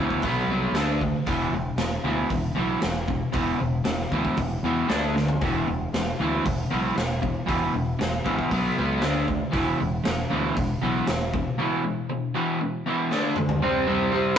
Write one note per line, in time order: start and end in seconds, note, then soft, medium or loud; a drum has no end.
0.00 0.25 D2 medium
0.00 0.22 E2 medium
0.00 0.23 B2 medium
0.00 0.23 E3 medium
0.10 kick medium
0.22 0.42 B1 medium
0.22 0.48 B2 medium
0.22 0.48 F#3 loud
0.22 0.49 B3 loud
0.22 kick medium
0.22 open hi-hat medium
0.47 0.67 C2 medium
0.47 0.74 B2 medium
0.47 0.74 F#3 loud
0.47 0.74 B3 medium
0.72 1.11 D2 medium
0.72 1.00 D3 medium
0.72 1.00 A3 medium
0.72 snare loud
0.72 open hi-hat medium
0.76 1.00 D4 loud
1.01 1.25 D3 medium
1.01 1.25 A3 medium
1.01 kick medium
1.26 1.46 E1 medium
1.26 1.51 E2 medium
1.26 1.52 B2 medium
1.26 1.52 E3 medium
1.26 kick loud
1.26 open hi-hat medium
1.51 1.70 E1 medium
1.51 1.77 E2 medium
1.51 1.77 B2 medium
1.76 1.96 E1 medium
1.76 2.02 E2 medium
1.76 2.02 B2 medium
1.76 snare loud
1.76 open hi-hat medium
2.04 2.23 D2 medium
2.04 2.29 E2 medium
2.04 2.29 B2 medium
2.04 2.29 E3 loud
2.30 2.50 E1 medium
2.30 2.54 E2 medium
2.30 2.55 B2 medium
2.30 kick loud
2.30 open hi-hat medium
2.55 2.76 B1 medium
2.55 2.80 E2 medium
2.55 2.80 B2 medium
2.55 2.81 E3 loud
2.81 3.21 E1 medium
2.81 3.05 E2 medium
2.81 3.05 B2 medium
2.81 snare loud
2.81 open hi-hat medium
3.08 3.31 E2 medium
3.08 3.31 B2 medium
3.08 kick medium
3.32 3.53 E1 medium
3.32 3.58 E2 medium
3.32 3.58 B2 medium
3.32 3.58 E3 medium
3.32 kick loud
3.32 open hi-hat medium
3.59 3.80 E1 medium
3.59 3.83 E2 medium
3.59 3.83 B2 medium
3.84 4.05 E1 medium
3.84 4.09 E2 medium
3.84 4.09 B2 medium
3.84 snare loud
3.84 open hi-hat medium
4.11 4.30 D2 medium
4.11 4.36 E2 medium
4.11 4.37 B2 loud
4.11 4.37 E3 medium
4.11 kick medium
4.25 kick medium
4.37 4.57 E1 medium
4.37 4.61 E2 medium
4.37 4.61 B2 medium
4.37 kick loud
4.37 open hi-hat medium
4.63 4.82 E2 medium
4.63 4.88 E2 medium
4.63 4.88 B2 medium
4.63 4.88 E3 medium
4.89 5.28 D2 medium
4.89 5.13 D3 medium
4.89 5.14 A3 loud
4.89 5.14 D4 loud
4.89 snare loud
4.89 open hi-hat medium
5.15 5.39 D3 medium
5.15 5.39 A3 medium
5.15 snare medium
5.28 floor tom medium
5.41 5.60 E1 medium
5.41 5.66 E2 medium
5.41 5.66 B2 medium
5.41 5.67 E3 medium
5.41 kick loud
5.41 open hi-hat medium
5.67 5.86 E1 medium
5.67 5.91 E2 medium
5.67 5.91 B2 medium
5.93 6.12 E1 medium
5.93 6.17 E2 medium
5.93 6.17 B2 medium
5.93 snare loud
5.93 open hi-hat medium
6.19 6.38 D2 medium
6.19 6.43 E2 medium
6.19 6.44 B2 medium
6.19 6.44 E3 loud
6.45 6.64 E1 medium
6.45 6.68 E2 medium
6.45 6.69 B2 medium
6.45 kick loud
6.45 open hi-hat medium
6.71 6.91 B1 medium
6.71 6.95 E2 medium
6.71 6.95 B2 medium
6.71 6.95 E3 medium
6.96 7.34 E1 medium
6.96 7.19 E2 medium
6.96 7.19 B2 medium
6.96 snare loud
6.96 open hi-hat medium
7.22 7.45 E2 medium
7.22 7.45 B2 medium
7.22 kick medium
7.47 7.67 E1 medium
7.47 7.71 E2 medium
7.47 7.72 B2 medium
7.47 7.72 E3 medium
7.47 kick medium
7.47 open hi-hat medium
7.74 7.93 E1 loud
7.74 7.97 E2 medium
7.74 7.97 B2 medium
7.99 8.19 E1 medium
7.99 8.22 E2 medium
7.99 8.23 B2 medium
7.99 snare loud
7.99 open hi-hat medium
8.25 8.44 A1 medium
8.25 8.49 E2 medium
8.25 8.49 B2 medium
8.25 8.50 E3 loud
8.25 kick medium
8.39 kick medium
8.51 8.70 B1 medium
8.51 8.75 B2 medium
8.51 8.76 F#3 medium
8.51 8.76 B3 loud
8.51 kick medium
8.51 open hi-hat medium
8.78 9.04 C#2 medium
8.78 9.01 B2 medium
8.78 9.02 F#3 loud
8.78 9.02 B3 loud
9.02 9.41 D2 medium
9.02 9.26 D3 medium
9.02 9.26 A3 medium
9.02 9.27 D4 loud
9.02 snare loud
9.02 open hi-hat medium
9.27 9.50 D3 medium
9.27 9.51 A3 medium
9.27 kick medium
9.51 9.72 E1 medium
9.51 9.76 E2 medium
9.51 9.77 B2 medium
9.51 9.77 E3 loud
9.51 kick loud
9.51 open hi-hat medium
9.80 9.99 E1 medium
9.80 10.03 E2 medium
9.80 10.03 B2 medium
10.04 10.24 E1 medium
10.04 10.27 E2 medium
10.04 10.28 B2 medium
10.04 snare loud
10.04 open hi-hat medium
10.30 10.50 D2 medium
10.30 10.54 E2 medium
10.30 10.55 B2 loud
10.30 10.55 E3 loud
10.56 10.75 E1 medium
10.56 10.79 E2 medium
10.56 10.79 B2 medium
10.56 kick loud
10.56 open hi-hat medium
10.82 11.00 B1 loud
10.82 11.06 E2 medium
10.82 11.06 B2 medium
10.82 11.06 E3 loud
11.07 11.45 E1 medium
11.07 11.30 E2 medium
11.07 11.30 B2 medium
11.07 snare loud
11.07 open hi-hat medium
11.34 11.56 E2 medium
11.34 11.56 B2 medium
11.34 kick medium
11.58 11.82 E2 medium
11.58 11.82 B2 medium
11.58 11.83 E3 medium
11.84 12.06 E2 medium
11.84 12.06 B2 medium
12.10 12.32 E2 medium
12.10 12.32 B2 medium
12.35 12.58 E2 medium
12.35 12.59 B2 medium
12.35 12.59 E3 medium
12.61 12.83 E2 medium
12.61 12.83 B2 medium
12.86 13.09 E2 medium
12.86 13.10 B2 medium
12.86 13.10 E3 medium
13.11 13.35 D3 medium
13.11 13.35 A3 medium
13.11 13.35 D4 loud
13.11 snare medium
13.36 13.60 D3 medium
13.36 13.60 A3 medium
13.36 mid tom medium
13.49 floor tom medium
13.62 13.86 C3 medium
13.62 13.87 G3 medium
13.62 13.87 C4 loud
13.86 14.11 C3 medium
13.86 14.12 G3 loud
13.86 14.12 C4 loud
14.11 14.37 C3 loud
14.11 14.37 G3 loud
14.11 14.38 C4 loud